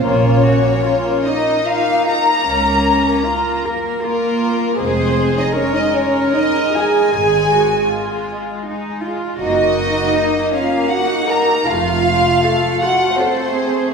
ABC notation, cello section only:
X:1
M:3/4
L:1/8
Q:1/4=78
K:Bbm
V:1 name="Cello section"
F G F E3 | D2 F B F2 | A2 B4 | A G F2 E F |
G2 E D E2 | F2 =A F A _A |]